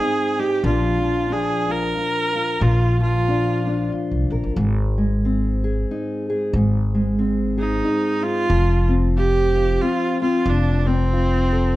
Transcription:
Already playing: G#2 G#3 C4 G#4
0.01 D#4
0.39 D#4 G4
0.63 A#1 A#2 F3 D4 F4
1.02 F3
1.30 D4 G#4
1.69 F4 A#4
1.97 F4
2.35 F4
2.60 A#1 A#2 F4
3.00 F3 F4
3.28 D4
3.67 D4
3.92 F4
4.11 C2
4.30 A#1 A#4
4.44 G#1
4.56 G#1 G#2
4.98 G#3
5.25 C4
5.64 G#4
5.91 D#4
6.30 G#4
6.53 G#1 G#2
6.95 G#3
7.19 C4
7.57 D#4 G#4
7.84 D#4
8.23 D#4 F4
8.49 F1 F3
8.89 C4
9.17 F4 G4
9.56 F4
9.81 C4 F4
10.21 C4 F4
10.46 F1 F3 D4
10.86 C4
11.13 F4
11.52 A4

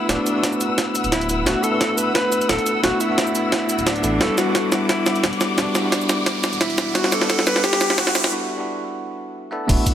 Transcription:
Already playing: A3 B3 D4 E4 F#4 B4 F#5 E6, riser
0.08 D1 A3 B3 D4 E4 F#4, kick, snare, closed hi-hat
0.27 closed hi-hat, cabasa
0.34 A3 B3 D4 E4 F#4
0.43 kick, snare, closed hi-hat
0.53 cabasa
0.61 closed hi-hat, cabasa
0.78 kick, snare, closed hi-hat
0.95 closed hi-hat, cabasa
1.04 D1, closed hi-hat, cabasa
1.12 E4, kick, snare, closed hi-hat
1.21 closed hi-hat
1.29 closed hi-hat, cabasa
1.46 D1 A3 B3 D4 E4 F#4, kick, snare, closed hi-hat
1.63 A4, closed hi-hat, cabasa
1.71 A3 B3 D4 E4 B4
1.81 kick, snare, closed hi-hat
1.97 B4, closed hi-hat, cabasa
2.15 B4, kick, snare, closed hi-hat
2.32 closed hi-hat, cabasa
2.41 closed hi-hat, cabasa
2.49 D1 A4, kick, snare, closed hi-hat
2.59 closed hi-hat
2.66 closed hi-hat, cabasa
2.83 D1 A3 B3 D4 E4 F#4, kick, snare, closed hi-hat
3.01 E4, closed hi-hat, cabasa
3.08 A3 B3 D4 E4 F#4
3.18 kick, snare, closed hi-hat
3.27 cabasa
3.35 closed hi-hat, cabasa
3.52 kick, snare, closed hi-hat
3.69 closed hi-hat, cabasa
3.78 D1, closed hi-hat, cabasa
3.86 D4, kick, snare, closed hi-hat
3.96 closed hi-hat
4.03 A1 A3 B3 D4 E4 A4, closed hi-hat, cabasa
4.20 E1 G3 B3 D4 E4 F#4 A4 D6, kick, snare, closed hi-hat
4.38 F#4, snare, closed hi-hat, cabasa
4.45 G3 B3 D4 E4 A4
4.55 kick, snare, closed hi-hat
4.72 E4, snare, closed hi-hat, cabasa
4.89 E4, kick, snare, closed hi-hat
5.06 snare, closed hi-hat, cabasa
5.16 closed hi-hat, cabasa
5.24 E1, kick, snare, closed hi-hat
5.33 closed hi-hat
5.41 snare, closed hi-hat, cabasa
5.57 E1 G3 B3 D4 E4 F#4, kick, snare, closed hi-hat
5.75 snare, closed hi-hat, cabasa
5.82 G3 B3 D4 E4 F#4
5.92 kick, snare, closed hi-hat
6.02 cabasa
6.09 snare, closed hi-hat, cabasa
6.26 kick, snare, closed hi-hat
6.44 snare, closed hi-hat, cabasa
6.53 E1, closed hi-hat, cabasa
6.61 E4, kick, snare, closed hi-hat
6.70 closed hi-hat
6.78 snare, closed hi-hat, cabasa
6.94 E1 G3 B3 D4 E4 F#4, kick, snare, closed hi-hat
7.04 snare
7.12 A4, snare, closed hi-hat, cabasa
7.19 G3 B3 D4 E4 A4, snare
7.29 kick, snare, closed hi-hat
7.39 snare
7.46 B4, snare, closed hi-hat, cabasa
7.56 snare
7.64 G4, kick, snare, closed hi-hat
7.73 snare
7.81 snare, closed hi-hat, cabasa
7.90 snare, closed hi-hat, cabasa
7.98 E1 F#4, kick, snare, closed hi-hat
8.07 snare, closed hi-hat
8.15 E4, snare, closed hi-hat, cabasa
8.24 snare
8.31 G3 B3 D4 E4 F#4
8.56 G3 B3 D4 E4 F#4
9.51 A3 B3 D4 E4 A4
9.68 D1 A3 B3 D4 E4 F#4 B4 F#5 E6, kick, closed hi-hat, crash
9.86 kick, closed hi-hat, cabasa

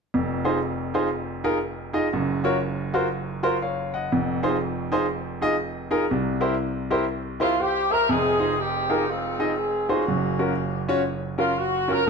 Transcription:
0.14 F1 F2
0.45 D#4 F4 G#4 C5
0.94 D#4 F4 G#4 C5
1.44 D#4 F4 G#4 A#4
1.93 D#4 F4 G#4 D#5
2.13 F#1 F#2
2.44 F4 F#4 A#4 C#5
2.94 F4 F#4 A#4 C5
3.43 F4 F#4 A#4 C5
3.62 C#5 F5
3.94 D#5 F#5
4.12 F1 F2
4.43 D#4 F4 G#4 C5
4.92 D#4 F4 G#4 C5
5.41 D#4 F4 G#4 D#5
5.91 D#4 F4 G#4 A#4
6.10 C2 C3
6.41 E4 G4 A#4 C5
6.90 E4 G4 A#4 C5
7.40 E4 F4 G4 A#4 C5
7.60 G4 C5
7.90 A#4 C5 E5
8.09 F1 F2 C4 D#4 G#4
8.39 D#4 F4 G#4 C5
8.59 C4 D#4 G4
8.89 D#4 F4 G#4 A#4
9.08 G#3 C4 F4
9.39 D#4 F4 G#4 D#5
9.57 G#4
9.89 A#3 C#4 D#4 F4 F#4 G#4 C5
10.08 F#1 F#2
10.39 C#4 F4 F#4 A#4
10.88 C#4 F4 F#4 C#5
11.38 C#4 F4 F#4 A#4
11.58 F#4
11.88 C#4 F4 F#4 A#4

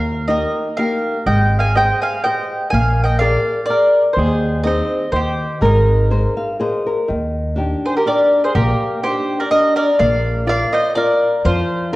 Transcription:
Already playing: D#2 D#3 A#4 F5
0.28 A#3 D#4 G4 A#4 D#5
0.77 A#3 D#4 G4 A#4 F5
1.26 G#1 G#3 D#5 G5
1.59 F5 G#5
1.75 G4 G#4 C5 D#5 G5
2.02 F5 G#5
2.24 G4 G#4 C5 D#5 G5
2.70 A#1 A#3 F5 G#5
3.04 D#5 G5
3.19 G#4 A#4 D5 F5
3.66 G#4 A#4 D5
3.70 A#4 D5
4.13 D#2 D#3 C5
4.19 G#4
4.64 C4 D#4 G#4 C5 D#5
5.12 D#2 D#3 C5
5.16 G4
5.61 G#1 G#3 A#4
5.65 D#4
6.11 G#4 A#4 C5
6.37 F5
6.60 G#4 A#4 C5 D#5
6.86 A#4
7.08 D#2 D#3
7.56 D4 D#4 G4
7.85 G#4 C5
7.96 G4 A#4
8.05 D4 D#4 G4 A#4 D5
8.44 G#4 C5
8.55 A#1 A#3 G4 A#4
9.03 D4 D#4 G4 C5
9.40 A#4 D5
9.51 D4 D#4 G4 A#4 D#5
9.76 A#4 D5
9.99 A#1 A#3 D5 F5
10.47 F4 A#4 D5 F5
10.73 C5 D#5
10.95 F4 A#4 D5
11.45 F2 F3 F4 C5
11.93 F4

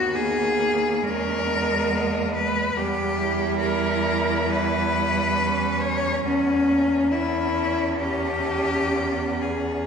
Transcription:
Already playing: D#2 B3 F#4
0.15 A#3 G#4
1.01 E2 G#3 C#4 A#4
1.47 B3
1.90 A#3
2.34 G#3 B4
2.75 E2 G3 B3 G4
3.16 E4
3.59 A#4
4.48 G3 B4
5.37 C#4
5.82 C#5
6.24 E2 B3 C#4
6.68 A#3
7.10 B3 C#4 E4
7.55 C#4
7.99 C#4 G4
8.94 B3
9.42 G#4

